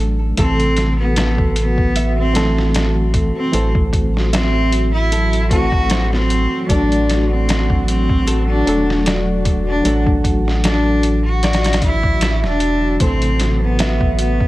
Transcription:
0.00 0.34 A1 medium
0.00 0.34 F#3 medium
0.00 0.34 A3 medium
0.00 0.39 A3 medium
0.00 0.34 D4 medium
0.00 0.35 A4 medium
0.00 0.35 A4 loud
0.00 0.40 A4 medium
0.37 3.32 A1 loud
0.37 2.32 C3 medium
0.37 2.31 E3 medium
0.37 12.99 F#3 medium
0.37 2.31 A3 medium
0.37 0.93 C4 loud
0.37 13.00 F#4 medium
0.37 1.14 A4 medium
0.37 2.32 A4 medium
0.37 kick loud
0.37 closed hi-hat medium
0.60 closed hi-hat soft
0.77 snare soft
0.77 closed hi-hat medium
0.99 1.51 B3 medium
1.16 1.92 A4 medium
1.16 snare loud
1.16 closed hi-hat medium
1.38 kick loud
1.56 2.12 B3 medium
1.56 closed hi-hat medium
1.78 kick medium
1.96 2.71 E5 medium
1.96 closed hi-hat medium
2.19 2.70 C4 loud
2.34 3.49 E3 medium
2.34 3.49 A3 medium
2.34 3.50 C4 medium
2.34 3.50 A4 loud
2.34 snare loud
2.34 closed hi-hat medium
2.58 snare soft
2.75 3.50 A4 medium
2.75 snare loud
2.75 closed hi-hat medium
3.14 kick medium
3.14 closed hi-hat medium
3.37 3.71 C4 medium
3.52 6.47 A1 loud
3.52 5.46 E3 medium
3.52 5.46 A3 medium
3.52 5.47 C4 medium
3.52 5.47 A4 medium
3.52 4.29 C5 medium
3.52 closed hi-hat medium
3.75 kick loud
3.93 kick medium
3.93 closed hi-hat medium
4.17 snare soft
4.33 4.88 C4 loud
4.33 5.08 E5 medium
4.33 snare loud
4.33 closed hi-hat medium
4.72 closed hi-hat medium
4.94 5.46 E4 medium
5.12 5.87 A4 medium
5.12 closed hi-hat medium
5.33 closed hi-hat soft
5.50 6.65 E3 medium
5.50 6.65 A3 medium
5.50 6.66 C4 medium
5.50 6.06 F#4 loud
5.50 6.66 A4 loud
5.50 kick medium
5.50 closed hi-hat medium
5.72 kick loud
5.90 6.66 C5 medium
5.90 snare loud
5.90 closed hi-hat medium
6.13 6.65 C4 loud
6.13 snare soft
6.30 closed hi-hat medium
6.69 8.63 A1 loud
6.69 8.62 F#3 medium
6.69 8.62 A3 medium
6.69 7.24 D4 loud
6.69 8.63 D4 medium
6.69 8.63 A4 medium
6.69 7.45 D5 medium
6.69 kick loud
6.69 closed hi-hat medium
6.92 closed hi-hat soft
7.09 snare soft
7.09 closed hi-hat medium
7.30 7.82 C4 medium
7.48 8.24 F#4 medium
7.48 snare loud
7.48 closed hi-hat medium
7.70 kick medium
7.88 8.43 C4 loud
7.88 closed hi-hat medium
8.09 kick medium
8.27 9.02 A4 medium
8.27 closed hi-hat medium
8.49 9.01 D4 loud
8.66 9.82 E1 loud
8.66 9.81 F#3 medium
8.66 9.81 A3 medium
8.66 9.81 D4 medium
8.66 9.82 A4 loud
8.66 closed hi-hat medium
8.90 snare soft
9.06 9.81 D5 medium
9.06 snare loud
9.06 closed hi-hat medium
9.45 kick medium
9.45 closed hi-hat medium
9.68 10.03 D4 medium
9.84 12.45 A1 loud
9.84 11.78 F#3 medium
9.84 11.78 A3 medium
9.84 11.78 D4 medium
9.84 10.61 F#4 medium
9.84 11.79 A4 medium
9.84 closed hi-hat medium
10.07 kick loud
10.24 kick medium
10.24 closed hi-hat medium
10.48 snare soft
10.64 11.19 D4 loud
10.64 11.40 A4 medium
10.64 snare loud
10.64 closed hi-hat medium
11.03 closed hi-hat medium
11.26 11.77 F#4 medium
11.43 11.79 D5 medium
11.43 snare medium
11.43 closed hi-hat medium
11.53 snare medium
11.53 closed hi-hat medium
11.64 snare medium
11.64 closed hi-hat medium
11.73 snare medium
11.73 closed hi-hat medium
11.82 12.38 E4 loud
11.82 kick loud
11.82 closed hi-hat medium
12.03 kick medium
12.21 12.60 E5 medium
12.21 snare loud
12.21 closed hi-hat medium
12.44 12.98 E1 loud
12.44 12.97 D4 loud
12.44 snare soft
12.60 closed hi-hat medium
13.00 14.48 A1 loud
13.00 14.48 C3 medium
13.00 14.48 E3 medium
13.00 14.48 F#3 medium
13.00 14.48 A3 medium
13.00 13.57 C4 loud
13.00 14.48 F#4 medium
13.00 14.48 A4 medium
13.00 13.76 C5 medium
13.00 kick loud
13.00 closed hi-hat medium
13.22 closed hi-hat soft
13.40 snare soft
13.40 closed hi-hat medium
13.64 14.15 B3 medium
13.79 14.48 E5 medium
13.79 snare loud
13.79 closed hi-hat medium
14.01 kick loud
14.19 14.48 B3 medium
14.19 closed hi-hat medium
14.40 kick medium

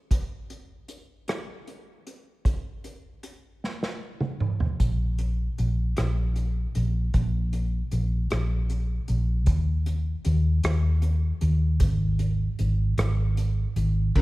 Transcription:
0.11 kick medium
0.11 closed hi-hat medium
0.50 closed hi-hat soft
0.88 closed hi-hat soft
1.28 cross-stick medium
1.28 closed hi-hat medium
1.67 closed hi-hat soft
2.07 closed hi-hat soft
2.45 kick medium
2.45 closed hi-hat medium
2.84 closed hi-hat soft
3.23 closed hi-hat soft
3.64 snare soft
3.83 snare soft
4.20 mid tom soft
4.40 mid tom medium
4.60 floor tom soft
4.80 5.47 A#1 medium
4.80 kick medium
4.80 closed hi-hat medium
5.18 closed hi-hat soft
5.58 5.92 A#1 medium
5.58 closed hi-hat soft
5.97 6.65 A#1 medium
5.97 cross-stick medium
5.97 closed hi-hat medium
6.36 closed hi-hat soft
6.75 7.09 A#1 medium
6.75 closed hi-hat soft
7.14 7.81 A#1 medium
7.14 kick medium
7.14 closed hi-hat medium
7.53 closed hi-hat soft
7.91 8.26 A#1 medium
7.91 closed hi-hat soft
8.30 8.98 A#1 medium
8.30 cross-stick medium
8.30 closed hi-hat medium
8.70 closed hi-hat soft
9.08 9.47 A#1 medium
9.08 closed hi-hat soft
9.46 10.14 D#2 medium
9.46 kick medium
9.46 closed hi-hat medium
9.86 closed hi-hat soft
10.25 10.59 D#2 medium
10.25 closed hi-hat soft
10.63 11.31 D#2 medium
10.63 cross-stick medium
10.63 closed hi-hat medium
11.02 closed hi-hat soft
11.41 11.82 D#2 medium
11.41 closed hi-hat soft
11.80 12.48 G#1 medium
11.80 kick medium
11.80 closed hi-hat medium
12.19 closed hi-hat soft
12.59 12.93 G#1 medium
12.59 closed hi-hat soft
12.98 13.65 G#1 medium
12.98 cross-stick medium
12.98 closed hi-hat medium
13.37 closed hi-hat soft
13.76 14.10 G#1 medium
13.76 closed hi-hat soft
14.15 14.22 C#2 medium
14.15 14.22 C#3 medium
14.15 14.22 C#4 medium
14.15 14.22 F4 medium
14.15 14.22 A#4 medium
14.15 kick medium
14.15 crash medium

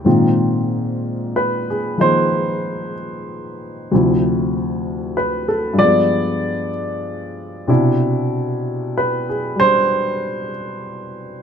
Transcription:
0.05 3.90 G#2 soft
0.05 3.91 A#2 soft
0.05 1.96 D#3 soft
0.05 3.91 C4 soft
0.05 3.91 F4 medium
1.36 1.67 B4 medium
1.70 2.00 G#4 soft
1.98 3.90 D#3 soft
1.98 3.90 F3 soft
1.98 3.90 G#3 soft
1.98 3.91 A#3 soft
1.98 3.91 D#4 soft
1.98 2.92 C5 medium
3.91 5.80 D2 soft
3.91 5.81 C3 soft
3.91 5.76 F3 soft
3.91 5.82 E4 soft
5.17 5.48 B4 medium
5.48 5.79 A4 medium
5.73 7.66 G2 soft
5.78 7.68 F3 soft
5.78 7.70 G#3 soft
5.78 6.69 D5 medium
5.84 7.71 B3 medium
7.67 11.42 B2 soft
7.67 11.42 C3 soft
7.67 9.59 D4 soft
7.67 11.42 E4 medium
8.98 9.28 B4 medium
9.29 9.59 G#4 soft
9.56 11.42 G3 soft
9.56 10.50 C5 medium
9.60 11.42 D4 soft

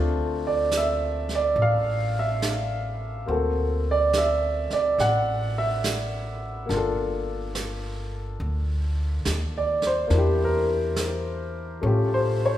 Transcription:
0.00 1.53 D2 medium
0.00 3.29 A3 medium
0.00 3.26 C4 medium
0.00 3.29 D4 medium
0.00 3.30 F4 medium
0.47 0.71 D5 medium
0.71 snare soft
0.71 hi-hat pedal soft
0.77 1.32 E5 medium
1.29 snare soft
1.35 1.59 D5 medium
1.56 3.24 A1 medium
1.56 brush sweep soft
1.62 2.17 F5 medium
2.19 2.99 E5 medium
2.42 snare soft
2.42 hi-hat pedal soft
3.26 4.69 D2 medium
3.26 6.64 A#3 medium
3.26 6.69 C4 soft
3.26 6.70 F#4 medium
3.26 brush sweep soft
3.31 6.71 A4 medium
3.91 4.15 D5 medium
4.13 snare medium
4.13 hi-hat pedal soft
4.18 4.73 E5 medium
4.70 4.99 D5 medium
4.70 muted upright bass stroke soft
4.70 snare soft
4.98 6.65 A1 medium
4.98 5.57 F#5 loud
4.98 brush sweep soft
4.98 snare soft
5.58 6.39 E5 medium
5.84 snare medium
5.84 hi-hat pedal medium
6.66 8.36 G1 medium
6.66 10.05 A#3 medium
6.66 10.09 D4 soft
6.70 10.12 F4 soft
6.70 brush sweep soft
6.70 snare soft
6.77 10.14 A4 medium
7.55 snare soft
7.55 hi-hat pedal medium
8.40 9.21 D2 medium
8.40 brush sweep soft
9.25 10.07 D#2 medium
9.25 snare soft
9.25 hi-hat pedal medium
9.58 9.83 D5 medium
9.82 snare soft
9.87 10.38 C5 medium
10.07 11.79 E2 medium
10.07 11.81 A#3 medium
10.07 11.83 D4 soft
10.07 brush sweep soft
10.07 snare soft
10.14 11.85 E4 medium
10.14 11.85 G4 medium
10.44 11.24 A#4 medium
10.96 snare medium
10.96 hi-hat pedal medium
11.81 12.58 A1 medium
11.81 12.58 A3 medium
11.81 12.58 C#4 soft
11.81 12.58 F4 soft
11.81 brush sweep soft
11.86 12.58 G4 medium
12.14 12.41 C5 medium
12.46 12.58 C#5 medium

